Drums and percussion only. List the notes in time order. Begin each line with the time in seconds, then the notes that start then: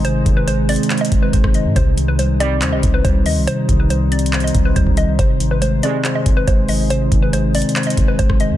0.05 closed hi-hat
0.26 kick, closed hi-hat
0.48 closed hi-hat
0.69 closed hi-hat, open hi-hat
0.76 closed hi-hat
0.83 closed hi-hat
0.90 clap, closed hi-hat
0.98 closed hi-hat
1.05 closed hi-hat
1.12 kick, closed hi-hat
1.33 kick, closed hi-hat
1.44 kick, cross-stick
1.54 closed hi-hat
1.76 kick, closed hi-hat
1.98 closed hi-hat
2.19 closed hi-hat
2.40 closed hi-hat
2.62 clap, closed hi-hat
2.83 kick, closed hi-hat
3.05 kick, closed hi-hat
3.26 open hi-hat
3.48 closed hi-hat
3.69 kick, closed hi-hat
3.90 closed hi-hat
4.12 closed hi-hat
4.19 closed hi-hat
4.26 closed hi-hat
4.33 clap, closed hi-hat
4.40 closed hi-hat
4.47 closed hi-hat
4.55 kick, closed hi-hat
4.76 kick, closed hi-hat
4.87 kick
4.97 closed hi-hat
5.19 kick, closed hi-hat
5.40 closed hi-hat
5.62 closed hi-hat
5.83 closed hi-hat
6.05 clap, closed hi-hat
6.26 kick, closed hi-hat
6.48 kick, closed hi-hat
6.69 open hi-hat
6.90 closed hi-hat
7.12 kick, closed hi-hat
7.33 closed hi-hat
7.55 closed hi-hat, open hi-hat
7.62 closed hi-hat
7.69 closed hi-hat
7.76 clap, closed hi-hat
7.83 closed hi-hat
7.90 closed hi-hat
7.97 kick, closed hi-hat
8.19 kick, closed hi-hat
8.30 kick, cross-stick
8.40 closed hi-hat